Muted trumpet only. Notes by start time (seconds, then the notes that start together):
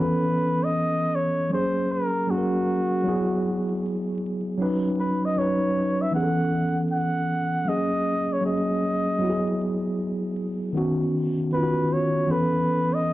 0.01 B4
0.64 D#5
1.15 C#5
1.53 C5
1.92 A#4
2.30 F#4
5.00 B4
5.25 D#5
5.38 C#5
6.02 E5
6.15 F#5
6.92 F#5
7.69 D#5
8.33 C#5
8.46 D#5
11.54 B4
11.93 C#5
12.32 B4
12.94 D#5